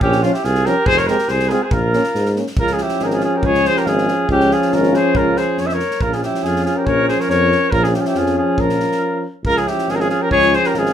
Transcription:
0.01 tuba A#1, alto saxophone C#4, trumpet G4, kick
0.12 snare
0.22 trombone F3, alto saxophone C#4, euphonium C#4, trumpet F4, snare
0.33 alto saxophone E4, trumpet G4, snare
0.43 tuba C2, alto saxophone F4, trumpet G#4, snare
0.55 snare
0.65 trombone F3, euphonium C#4, alto saxophone G4, trumpet A#4, snare
0.86 tuba F1, alto saxophone G#4, trumpet C5, kick
0.97 alto saxophone A#4, trumpet C#5, snare
1.07 trombone G#3, euphonium C4, alto saxophone G4, trumpet A#4, snare
1.18 snare
1.28 tuba C2, alto saxophone G#4, trumpet C5, snare
1.39 snare
1.49 trombone G#3, euphonium C4, alto saxophone F4, trumpet G#4, snare
1.63 alto saxophone G#4, trumpet C5
1.71 tuba A#1, alto saxophone F4, trumpet A#4, kick
1.93 trombone A#3, euphonium C#4, snare
2.04 snare
2.15 tuba G#2, snare
2.25 snare
2.35 trombone A#3, euphonium C#4, snare
2.47 snare
2.57 tuba C#2, trombone F3, euphonium C#4, trumpet A#4, kick
2.61 alto saxophone F4
2.67 snare
2.72 alto saxophone F4, trumpet G#4
2.78 snare
2.82 alto saxophone E4, trumpet G4
2.88 snare
2.99 tuba G#1, alto saxophone F4, trumpet G#4, snare
3.05 alto saxophone G4, trumpet A#4
3.10 alto saxophone F4, trumpet G#4, snare
3.21 trumpet G#4, snare
3.25 alto saxophone F4
3.36 alto saxophone G4, trumpet A#4
3.43 tuba C#2, alto saxophone G#4, trumpet C#5, kick
3.54 snare
3.65 alto saxophone G#4, trumpet C5, snare
3.77 alto saxophone G4, trumpet A#4, snare
3.86 tuba G#1, alto saxophone F4, trumpet G#4, snare
3.98 snare
4.08 snare
4.28 tuba C#2, trombone F3, euphonium C#4, alto saxophone C#4, trumpet G4, kick
4.40 snare
4.51 alto saxophone F4, trumpet G#4, snare
4.62 snare
4.72 tuba G#1, alto saxophone F4, trumpet A#4, snare
4.83 snare
4.94 alto saxophone G#4, trumpet C5, snare
5.14 tuba C#2, alto saxophone F4, trumpet A#4, kick
5.36 alto saxophone G#4, trumpet C5, snare
5.58 tuba F2, alto saxophone G#4, trumpet C#5, snare
5.66 alto saxophone C5, trumpet E5, snare
5.73 alto saxophone A#4, trumpet C#5
5.80 snare
5.91 snare
6.00 tuba A#1, trombone F3, euphonium C#4, alto saxophone F4, trumpet A#4, kick
6.12 alto saxophone F4, trumpet G#4, snare
6.23 alto saxophone E4, trumpet G4, snare
6.34 snare
6.43 tuba F2, alto saxophone F4, trumpet G#4, snare
6.56 snare
6.64 alto saxophone F4, trumpet G#4, snare
6.76 alto saxophone G4, trumpet A#4
6.85 tuba A#1, alto saxophone A#4, trumpet C#5, kick
7.08 alto saxophone G#4, trumpet C5, snare
7.20 alto saxophone A#4, trumpet C#5, snare
7.29 tuba F2, alto saxophone A#4, trumpet C#5, snare
7.52 snare
7.71 tuba A#1, trombone F3, euphonium C#4, alto saxophone F4, trumpet A#4, kick
7.83 alto saxophone F4, trumpet G#4, snare
7.94 alto saxophone E4, trumpet G4, snare
7.99 alto saxophone F4, trumpet G#4
8.05 alto saxophone E4, trumpet G4, snare
8.15 tuba F2, alto saxophone F4, trumpet G#4, snare
8.26 snare
8.37 alto saxophone F4, trumpet G#4
8.58 tuba A#1, alto saxophone F4, trumpet A#4, kick
8.69 snare
8.80 snare
8.92 snare
9.44 tuba C#2, trombone F3, euphonium C#4, alto saxophone F4, trumpet A#4, kick
9.57 alto saxophone F4, trumpet G#4, snare
9.67 alto saxophone E4, trumpet G4, snare
9.78 snare
9.88 tuba G#1, alto saxophone F4, trumpet G#4, snare
9.94 alto saxophone G4, trumpet A#4
10.00 alto saxophone F4, trumpet G#4, snare
10.09 alto saxophone F4, trumpet G#4, snare
10.22 alto saxophone G4, trumpet A#4
10.31 tuba C#2, alto saxophone G#4, trumpet C#5, kick
10.42 snare
10.53 alto saxophone G#4, trumpet C5, snare
10.64 alto saxophone G4, trumpet A#4, snare
10.74 tuba G#1, alto saxophone F4, snare
10.79 trumpet G#4
10.86 snare

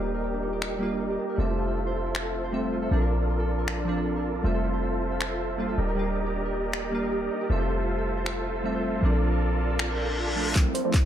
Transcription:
Already playing: 808-style bass D#1, synth keys G3 A#3 D4 F4, harp D#4 G4 A4 C5, supersaw synth G4 A#4 D5 D#5 A#5
0.04 harp D4
0.14 harp A#4
0.24 harp G4
0.34 harp D4
0.43 harp D#4
0.53 harp G4
0.62 harp D4, finger snap
0.72 harp A#4
0.79 synth keys G3 A#3 F4, harp G4
0.91 harp D4
1.00 harp D#4
1.10 harp G4
1.19 harp D4
1.29 harp A#4
1.36 808-style bass F1, synth keys G3 A3 C4 E5, supersaw synth F4 A4 C5 E5 A5, harp A4
1.48 harp E4
1.58 harp F4
1.68 harp A4
1.77 harp E4
1.87 harp C5
1.96 harp A4
2.06 harp E4
2.15 harp F4, finger snap
2.25 harp A4
2.34 harp E4
2.44 harp C5
2.52 synth keys G3 A3 C4 E5, harp A4
2.63 harp E4
2.72 harp F4
2.82 harp A4
2.89 808-style bass A#1, synth keys F3 C4, harp D4, supersaw synth F4 A4 A#4 D5 A5
2.93 synth keys D4
3.01 harp A#4
3.10 harp A4
3.20 harp D4
3.29 harp F4
3.39 harp A4
3.49 harp D4
3.59 harp A#4
3.68 harp A4, finger snap
3.78 harp D4
3.85 synth keys F3 C4 D4, harp F4
3.97 harp A4
4.06 harp D4
4.16 harp A#4
4.25 harp A4
4.35 harp D4
4.42 808-style bass F1, synth keys G3 A3 C4, supersaw synth F4 A4 C5 E5 A5, harp F4
4.46 synth keys E5
4.54 harp A4
4.63 harp E4
4.73 harp C5
4.82 harp A4
4.93 harp E4
5.02 harp F4
5.12 harp A4
5.21 harp E4, finger snap
5.31 harp C5
5.40 harp A4
5.50 harp E4
5.58 synth keys G3 A#3 D4 F4, harp F4
5.69 harp A4
5.78 808-style bass D#1, harp D4, supersaw synth G4 A#4 D5 D#5 A#5
5.88 harp A#4
5.95 synth keys G3 A#3, harp G4
5.99 synth keys F4
6.07 harp D4
6.16 harp D#4
6.26 harp G4
6.35 harp D4
6.45 harp A#4
6.54 harp G4
6.64 harp D4
6.73 harp D#4, finger snap
6.83 harp G4
6.91 synth keys G3 A#3 F4, harp D4
7.02 harp A#4
7.12 harp G4
7.22 harp D4
7.31 harp D#4
7.41 harp G4
7.48 808-style bass F1, synth keys G3 A3 C4, harp E4, supersaw synth F4 A4 C5 E5 A5
7.52 synth keys E5
7.60 harp C5
7.69 harp A4
7.79 harp E4
7.88 harp F4
7.98 harp A4
8.07 harp E4
8.17 harp C5
8.26 harp A4, finger snap
8.36 harp E4
8.45 harp F4
8.55 harp A4
8.63 synth keys G3 A3 C4 E5, harp E4
8.74 harp C5
8.84 harp A4
8.94 harp E4
9.01 808-style bass A#1, synth keys F3 C4 D4, supersaw synth F4 A4 A#4 D5 A5, harp F4
9.13 harp A4
9.22 harp D4
9.32 harp A#4
9.41 harp A4
9.51 harp D4
9.60 harp F4
9.70 harp A4
9.79 harp D4, finger snap, reverse cymbal
9.89 harp A#4
9.98 harp A4
10.08 harp D4
10.17 harp F4
10.27 harp A4
10.36 synth keys F3 A3 C4 D4, harp D4
10.47 harp A#4
10.54 supersaw synth F3 A3 C4 E4 A4, synth keys G3 A3 C4 E4, kick, clap, closed hi-hat, riser
10.74 supersaw synth F3 A3 C4 E4 A4, fm electric piano C5, closed hi-hat
10.85 supersaw synth F3 A3 C4 E4 D5, fm electric piano C5
10.94 kick, clap, closed hi-hat

